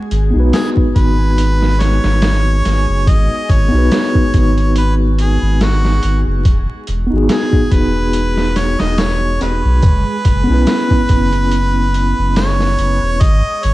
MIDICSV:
0, 0, Header, 1, 6, 480
1, 0, Start_track
1, 0, Key_signature, 5, "minor"
1, 0, Tempo, 845070
1, 1745, Time_signature, 4, 2, 24, 8
1, 7803, End_track
2, 0, Start_track
2, 0, Title_t, "Harmonica"
2, 0, Program_c, 0, 22
2, 307, Note_on_c, 0, 68, 82
2, 398, Note_off_c, 0, 68, 0
2, 542, Note_on_c, 0, 71, 92
2, 1026, Note_on_c, 0, 73, 103
2, 1034, Note_off_c, 0, 71, 0
2, 1749, Note_on_c, 0, 75, 111
2, 1758, Note_off_c, 0, 73, 0
2, 1991, Note_on_c, 0, 73, 96
2, 2000, Note_off_c, 0, 75, 0
2, 2708, Note_off_c, 0, 73, 0
2, 2714, Note_on_c, 0, 71, 97
2, 2805, Note_off_c, 0, 71, 0
2, 2959, Note_on_c, 0, 68, 87
2, 3176, Note_off_c, 0, 68, 0
2, 3199, Note_on_c, 0, 66, 80
2, 3542, Note_off_c, 0, 66, 0
2, 4151, Note_on_c, 0, 68, 87
2, 4390, Note_on_c, 0, 71, 101
2, 4399, Note_off_c, 0, 68, 0
2, 4867, Note_on_c, 0, 73, 101
2, 4875, Note_off_c, 0, 71, 0
2, 5003, Note_on_c, 0, 75, 102
2, 5011, Note_off_c, 0, 73, 0
2, 5108, Note_on_c, 0, 73, 98
2, 5117, Note_off_c, 0, 75, 0
2, 5345, Note_off_c, 0, 73, 0
2, 5348, Note_on_c, 0, 71, 99
2, 7004, Note_off_c, 0, 71, 0
2, 7027, Note_on_c, 0, 73, 106
2, 7507, Note_on_c, 0, 75, 122
2, 7515, Note_off_c, 0, 73, 0
2, 7747, Note_on_c, 0, 73, 104
2, 7756, Note_off_c, 0, 75, 0
2, 7803, Note_off_c, 0, 73, 0
2, 7803, End_track
3, 0, Start_track
3, 0, Title_t, "Tine electric piano"
3, 0, Program_c, 1, 4
3, 174, Note_on_c, 1, 59, 73
3, 191, Note_on_c, 1, 63, 68
3, 209, Note_on_c, 1, 66, 73
3, 226, Note_on_c, 1, 71, 91
3, 2074, Note_off_c, 1, 59, 0
3, 2083, Note_off_c, 1, 63, 0
3, 2091, Note_off_c, 1, 66, 0
3, 2094, Note_on_c, 1, 59, 90
3, 2100, Note_off_c, 1, 71, 0
3, 2112, Note_on_c, 1, 63, 80
3, 2129, Note_on_c, 1, 66, 75
3, 2147, Note_on_c, 1, 71, 104
3, 3640, Note_off_c, 1, 59, 0
3, 3649, Note_off_c, 1, 63, 0
3, 3658, Note_off_c, 1, 66, 0
3, 3667, Note_off_c, 1, 71, 0
3, 4014, Note_on_c, 1, 59, 83
3, 4035, Note_on_c, 1, 63, 77
3, 4052, Note_on_c, 1, 66, 77
3, 4071, Note_on_c, 1, 68, 91
3, 5560, Note_off_c, 1, 59, 0
3, 5571, Note_off_c, 1, 63, 0
3, 5579, Note_off_c, 1, 66, 0
3, 5588, Note_off_c, 1, 68, 0
3, 5929, Note_on_c, 1, 59, 90
3, 5948, Note_on_c, 1, 61, 83
3, 5967, Note_on_c, 1, 64, 83
3, 5987, Note_on_c, 1, 71, 94
3, 7478, Note_off_c, 1, 59, 0
3, 7487, Note_off_c, 1, 61, 0
3, 7496, Note_off_c, 1, 64, 0
3, 7507, Note_off_c, 1, 71, 0
3, 7803, End_track
4, 0, Start_track
4, 0, Title_t, "Synth texture"
4, 0, Program_c, 2, 99
4, 0, Note_on_c, 2, 56, 73
4, 0, Note_on_c, 2, 68, 76
4, 7516, Note_off_c, 2, 56, 0
4, 7517, Note_off_c, 2, 68, 0
4, 7803, End_track
5, 0, Start_track
5, 0, Title_t, "Analog synth bass"
5, 0, Program_c, 3, 38
5, 67, Note_on_c, 3, 32, 101
5, 183, Note_off_c, 3, 32, 0
5, 200, Note_on_c, 3, 35, 80
5, 293, Note_off_c, 3, 35, 0
5, 545, Note_on_c, 3, 32, 97
5, 1133, Note_off_c, 3, 32, 0
5, 1161, Note_on_c, 3, 32, 96
5, 1486, Note_off_c, 3, 32, 0
5, 1509, Note_on_c, 3, 32, 72
5, 1624, Note_off_c, 3, 32, 0
5, 1642, Note_on_c, 3, 30, 85
5, 1734, Note_off_c, 3, 30, 0
5, 1747, Note_on_c, 3, 32, 101
5, 1863, Note_off_c, 3, 32, 0
5, 1987, Note_on_c, 3, 32, 94
5, 2103, Note_off_c, 3, 32, 0
5, 2122, Note_on_c, 3, 35, 81
5, 2214, Note_off_c, 3, 35, 0
5, 2466, Note_on_c, 3, 32, 97
5, 3053, Note_off_c, 3, 32, 0
5, 3081, Note_on_c, 3, 32, 99
5, 3406, Note_off_c, 3, 32, 0
5, 3431, Note_on_c, 3, 32, 81
5, 3545, Note_off_c, 3, 32, 0
5, 3562, Note_on_c, 3, 30, 79
5, 3654, Note_off_c, 3, 30, 0
5, 3665, Note_on_c, 3, 28, 97
5, 3782, Note_off_c, 3, 28, 0
5, 3911, Note_on_c, 3, 28, 105
5, 4025, Note_off_c, 3, 28, 0
5, 4048, Note_on_c, 3, 32, 80
5, 4137, Note_off_c, 3, 32, 0
5, 4385, Note_on_c, 3, 28, 92
5, 4973, Note_off_c, 3, 28, 0
5, 5004, Note_on_c, 3, 28, 103
5, 5328, Note_off_c, 3, 28, 0
5, 5349, Note_on_c, 3, 28, 76
5, 5464, Note_off_c, 3, 28, 0
5, 5481, Note_on_c, 3, 35, 82
5, 5574, Note_off_c, 3, 35, 0
5, 5584, Note_on_c, 3, 30, 98
5, 5702, Note_off_c, 3, 30, 0
5, 5823, Note_on_c, 3, 30, 92
5, 5941, Note_off_c, 3, 30, 0
5, 5960, Note_on_c, 3, 35, 74
5, 6053, Note_off_c, 3, 35, 0
5, 6303, Note_on_c, 3, 30, 96
5, 6892, Note_off_c, 3, 30, 0
5, 6923, Note_on_c, 3, 30, 95
5, 7247, Note_off_c, 3, 30, 0
5, 7263, Note_on_c, 3, 30, 76
5, 7381, Note_off_c, 3, 30, 0
5, 7399, Note_on_c, 3, 28, 85
5, 7492, Note_off_c, 3, 28, 0
5, 7505, Note_on_c, 3, 32, 103
5, 7622, Note_off_c, 3, 32, 0
5, 7751, Note_on_c, 3, 32, 100
5, 7803, Note_off_c, 3, 32, 0
5, 7803, End_track
6, 0, Start_track
6, 0, Title_t, "Drums"
6, 64, Note_on_c, 9, 42, 66
6, 121, Note_off_c, 9, 42, 0
6, 303, Note_on_c, 9, 42, 80
6, 305, Note_on_c, 9, 38, 111
6, 359, Note_off_c, 9, 42, 0
6, 362, Note_off_c, 9, 38, 0
6, 437, Note_on_c, 9, 36, 88
6, 494, Note_off_c, 9, 36, 0
6, 543, Note_on_c, 9, 36, 88
6, 544, Note_on_c, 9, 42, 61
6, 600, Note_off_c, 9, 36, 0
6, 601, Note_off_c, 9, 42, 0
6, 784, Note_on_c, 9, 42, 84
6, 841, Note_off_c, 9, 42, 0
6, 922, Note_on_c, 9, 38, 39
6, 979, Note_off_c, 9, 38, 0
6, 1025, Note_on_c, 9, 42, 68
6, 1027, Note_on_c, 9, 38, 50
6, 1082, Note_off_c, 9, 42, 0
6, 1084, Note_off_c, 9, 38, 0
6, 1159, Note_on_c, 9, 38, 57
6, 1216, Note_off_c, 9, 38, 0
6, 1261, Note_on_c, 9, 42, 75
6, 1263, Note_on_c, 9, 38, 104
6, 1318, Note_off_c, 9, 42, 0
6, 1320, Note_off_c, 9, 38, 0
6, 1507, Note_on_c, 9, 42, 70
6, 1509, Note_on_c, 9, 38, 41
6, 1564, Note_off_c, 9, 42, 0
6, 1566, Note_off_c, 9, 38, 0
6, 1745, Note_on_c, 9, 36, 109
6, 1746, Note_on_c, 9, 42, 87
6, 1801, Note_off_c, 9, 36, 0
6, 1803, Note_off_c, 9, 42, 0
6, 1985, Note_on_c, 9, 36, 93
6, 1985, Note_on_c, 9, 42, 63
6, 2042, Note_off_c, 9, 36, 0
6, 2042, Note_off_c, 9, 42, 0
6, 2224, Note_on_c, 9, 42, 89
6, 2226, Note_on_c, 9, 38, 108
6, 2281, Note_off_c, 9, 42, 0
6, 2283, Note_off_c, 9, 38, 0
6, 2358, Note_on_c, 9, 36, 92
6, 2415, Note_off_c, 9, 36, 0
6, 2464, Note_on_c, 9, 42, 65
6, 2465, Note_on_c, 9, 36, 86
6, 2520, Note_off_c, 9, 42, 0
6, 2521, Note_off_c, 9, 36, 0
6, 2599, Note_on_c, 9, 42, 40
6, 2656, Note_off_c, 9, 42, 0
6, 2702, Note_on_c, 9, 42, 81
6, 2759, Note_off_c, 9, 42, 0
6, 2945, Note_on_c, 9, 42, 71
6, 3002, Note_off_c, 9, 42, 0
6, 3186, Note_on_c, 9, 42, 81
6, 3188, Note_on_c, 9, 38, 104
6, 3243, Note_off_c, 9, 42, 0
6, 3245, Note_off_c, 9, 38, 0
6, 3321, Note_on_c, 9, 38, 37
6, 3378, Note_off_c, 9, 38, 0
6, 3424, Note_on_c, 9, 42, 66
6, 3480, Note_off_c, 9, 42, 0
6, 3664, Note_on_c, 9, 36, 113
6, 3664, Note_on_c, 9, 42, 89
6, 3721, Note_off_c, 9, 36, 0
6, 3721, Note_off_c, 9, 42, 0
6, 3903, Note_on_c, 9, 42, 65
6, 3960, Note_off_c, 9, 42, 0
6, 4142, Note_on_c, 9, 42, 80
6, 4144, Note_on_c, 9, 38, 110
6, 4198, Note_off_c, 9, 42, 0
6, 4201, Note_off_c, 9, 38, 0
6, 4276, Note_on_c, 9, 36, 93
6, 4333, Note_off_c, 9, 36, 0
6, 4382, Note_on_c, 9, 42, 60
6, 4383, Note_on_c, 9, 36, 89
6, 4439, Note_off_c, 9, 42, 0
6, 4440, Note_off_c, 9, 36, 0
6, 4619, Note_on_c, 9, 42, 86
6, 4676, Note_off_c, 9, 42, 0
6, 4756, Note_on_c, 9, 38, 37
6, 4813, Note_off_c, 9, 38, 0
6, 4861, Note_on_c, 9, 42, 67
6, 4864, Note_on_c, 9, 38, 53
6, 4918, Note_off_c, 9, 42, 0
6, 4920, Note_off_c, 9, 38, 0
6, 4996, Note_on_c, 9, 38, 60
6, 5053, Note_off_c, 9, 38, 0
6, 5100, Note_on_c, 9, 42, 81
6, 5103, Note_on_c, 9, 38, 110
6, 5157, Note_off_c, 9, 42, 0
6, 5159, Note_off_c, 9, 38, 0
6, 5345, Note_on_c, 9, 42, 65
6, 5347, Note_on_c, 9, 38, 40
6, 5401, Note_off_c, 9, 42, 0
6, 5404, Note_off_c, 9, 38, 0
6, 5581, Note_on_c, 9, 42, 89
6, 5583, Note_on_c, 9, 36, 108
6, 5638, Note_off_c, 9, 42, 0
6, 5639, Note_off_c, 9, 36, 0
6, 5821, Note_on_c, 9, 42, 70
6, 5822, Note_on_c, 9, 36, 90
6, 5878, Note_off_c, 9, 42, 0
6, 5879, Note_off_c, 9, 36, 0
6, 6059, Note_on_c, 9, 42, 86
6, 6061, Note_on_c, 9, 38, 108
6, 6116, Note_off_c, 9, 42, 0
6, 6118, Note_off_c, 9, 38, 0
6, 6195, Note_on_c, 9, 36, 93
6, 6252, Note_off_c, 9, 36, 0
6, 6299, Note_on_c, 9, 42, 63
6, 6302, Note_on_c, 9, 36, 89
6, 6356, Note_off_c, 9, 42, 0
6, 6359, Note_off_c, 9, 36, 0
6, 6434, Note_on_c, 9, 42, 40
6, 6490, Note_off_c, 9, 42, 0
6, 6540, Note_on_c, 9, 42, 86
6, 6597, Note_off_c, 9, 42, 0
6, 6784, Note_on_c, 9, 42, 70
6, 6840, Note_off_c, 9, 42, 0
6, 7022, Note_on_c, 9, 42, 79
6, 7024, Note_on_c, 9, 38, 109
6, 7079, Note_off_c, 9, 42, 0
6, 7081, Note_off_c, 9, 38, 0
6, 7159, Note_on_c, 9, 38, 42
6, 7215, Note_off_c, 9, 38, 0
6, 7263, Note_on_c, 9, 42, 68
6, 7319, Note_off_c, 9, 42, 0
6, 7502, Note_on_c, 9, 42, 88
6, 7504, Note_on_c, 9, 36, 113
6, 7559, Note_off_c, 9, 42, 0
6, 7560, Note_off_c, 9, 36, 0
6, 7742, Note_on_c, 9, 42, 72
6, 7799, Note_off_c, 9, 42, 0
6, 7803, End_track
0, 0, End_of_file